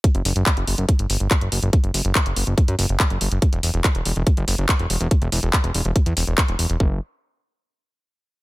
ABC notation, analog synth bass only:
X:1
M:4/4
L:1/16
Q:1/4=142
K:Edor
V:1 name="Analog synth bass" clef=bass
z F,,, F,,, F,,, z F,,, F,,, F,,, z G,,, G,,, G,,, z F,,, F,,, F,,, | z F,,, F,,, F,,, z F,,, F,,, F,,, z F,, F,,, F,,, z F,,, F,,, F,,, | z E,,, E,,, E,,, z E,,, E,,, E,,, z F,,, F,,, F,,, z E,,, E,,, E,,, | z E,,, E,,, E,,, z E,,, E,,, E,,, z E,, E,,, E,,, z E,,, E,,, E,,, |
F,,,2 z12 z2 |]